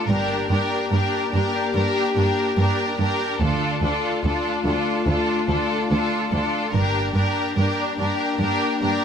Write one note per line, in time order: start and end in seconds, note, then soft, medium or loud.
0.08 0.47 G1 soft
0.08 0.17 G2 medium
0.08 3.24 A#3 medium
0.08 0.49 D4 medium
0.08 3.24 G4 medium
0.08 0.50 G4 soft
0.08 0.49 A#4 medium
0.50 0.58 G2 medium
0.50 0.89 D4 soft
0.50 0.92 G4 soft
0.50 0.90 A#4 soft
0.91 1.00 G2 medium
0.91 1.31 D4 soft
0.91 1.34 G4 soft
0.91 1.32 A#4 soft
1.32 1.41 G2 soft
1.32 1.74 D4 soft
1.32 1.75 G4 soft
1.32 1.74 A#4 soft
1.74 1.82 G2 medium
1.74 2.15 D4 soft
1.74 2.17 G4 medium
1.74 2.15 A#4 soft
2.16 2.24 G2 medium
2.16 2.56 D4 medium
2.16 2.58 G4 soft
2.16 2.56 A#4 soft
2.57 2.66 G2 medium
2.57 2.99 D4 soft
2.57 3.00 G4 soft
2.57 2.98 A#4 soft
2.99 3.07 G2 medium
2.99 3.39 D4 soft
2.99 3.41 G4 soft
2.99 3.40 A#4 medium
3.40 3.49 D2 medium
3.40 3.80 D2 soft
3.40 6.69 A3 medium
3.40 3.81 D4 medium
3.40 6.69 F4 medium
3.40 3.82 F4 medium
3.40 3.81 A4 soft
3.82 3.90 D2 soft
3.82 4.23 D4 medium
3.82 4.23 F4 soft
3.82 4.22 A4 soft
4.24 4.32 D2 medium
4.24 4.64 D4 soft
4.24 4.64 F4 soft
4.24 4.64 A4 soft
4.65 4.74 D2 medium
4.65 5.06 D4 soft
4.65 5.06 F4 soft
4.65 5.05 A4 soft
5.06 5.16 D2 medium
5.06 5.47 D4 medium
5.06 5.48 F4 soft
5.06 5.47 A4 soft
5.48 5.57 D2 soft
5.48 5.88 D4 soft
5.48 5.90 F4 soft
5.48 5.88 A4 soft
5.90 5.99 D2 medium
5.90 6.31 D4 soft
5.90 6.31 F4 medium
5.90 6.30 A4 medium
6.31 6.40 D2 medium
6.31 6.73 D4 medium
6.31 6.73 F4 soft
6.31 6.72 A4 soft
6.73 7.12 G1 medium
6.73 6.82 G2 medium
6.73 9.05 A#3 medium
6.73 9.05 D4 medium
6.73 7.14 D4 medium
6.73 7.14 G4 medium
6.73 7.13 A#4 medium
7.15 7.23 G2 soft
7.15 7.55 D4 soft
7.15 7.56 G4 soft
7.15 7.55 A#4 soft
7.56 7.66 G2 soft
7.56 7.97 D4 soft
7.56 7.98 G4 soft
7.56 7.97 A#4 soft
7.98 8.07 G2 medium
7.98 8.39 D4 soft
7.98 8.39 G4 soft
7.98 8.38 A#4 soft
8.40 8.48 G2 medium
8.40 8.80 D4 medium
8.40 8.80 G4 medium
8.40 8.80 A#4 soft
8.81 8.90 G2 soft
8.81 9.05 D4 soft
8.81 9.05 G4 soft
8.81 9.05 A#4 soft